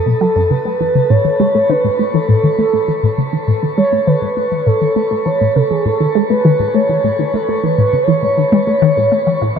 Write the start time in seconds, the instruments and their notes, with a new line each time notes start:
Already playing: analog synth lead A4
0.06 synth arpeggio sound B2
0.21 synth arpeggio sound F#3, analog synth lead A4
0.36 synth arpeggio sound F#2
0.50 synth arpeggio sound C#3, analog synth lead B4
0.65 synth arpeggio sound A3
0.80 synth arpeggio sound E3
0.95 synth arpeggio sound C#3
1.10 synth arpeggio sound A2, analog synth lead C#5
1.25 synth arpeggio sound D#3
1.40 synth arpeggio sound G#3
1.55 synth arpeggio sound A3
1.69 synth arpeggio sound D#3, analog synth lead B4
1.84 synth arpeggio sound A2
1.99 synth arpeggio sound A3
2.14 synth arpeggio sound E3, analog synth lead A4
2.29 synth arpeggio sound A2
2.44 synth arpeggio sound D#3
2.58 synth arpeggio sound A3, analog synth lead A4
2.73 synth arpeggio sound A3
2.88 synth arpeggio sound E3
3.03 synth arpeggio sound A2
3.18 synth arpeggio sound C#3
3.33 synth arpeggio sound E3
3.48 synth arpeggio sound A2
3.63 synth arpeggio sound D#3
3.77 synth arpeggio sound G#3, analog synth lead C#5
3.92 synth arpeggio sound A3
4.07 synth arpeggio sound D#3, analog synth lead B4
4.22 synth arpeggio sound A2
4.37 synth arpeggio sound A3
4.52 synth arpeggio sound E3
4.66 synth arpeggio sound A2, analog synth lead A4
4.81 synth arpeggio sound D#3
4.96 synth arpeggio sound A3
5.11 synth arpeggio sound A3
5.25 synth arpeggio sound E3, analog synth lead C#5
5.41 synth arpeggio sound A2
5.55 synth arpeggio sound C#3, analog synth lead A4
5.70 synth arpeggio sound E3, analog synth lead G#4
5.85 synth arpeggio sound A2, analog synth lead A4
6.00 synth arpeggio sound D#3
6.15 synth arpeggio sound G#3
6.30 synth arpeggio sound A3, analog synth lead B4
6.45 synth arpeggio sound D#3
6.60 synth arpeggio sound A2
6.74 synth arpeggio sound A3, analog synth lead C#5
6.89 synth arpeggio sound E3
7.04 synth arpeggio sound A2
7.19 synth arpeggio sound D#3
7.34 synth arpeggio sound A3, analog synth lead A4
7.49 synth arpeggio sound A3
7.63 synth arpeggio sound E3, analog synth lead B4
7.78 synth arpeggio sound A2
7.93 synth arpeggio sound C#3
8.03 analog synth lead C#5
8.08 synth arpeggio sound E3
8.22 synth arpeggio sound A2, analog synth lead C#5
8.38 synth arpeggio sound D#3
8.52 synth arpeggio sound G#3
8.67 synth arpeggio sound A3
8.82 synth arpeggio sound D#3
8.97 synth arpeggio sound A2
9.12 synth arpeggio sound A3
9.27 synth arpeggio sound E3
9.42 synth arpeggio sound A2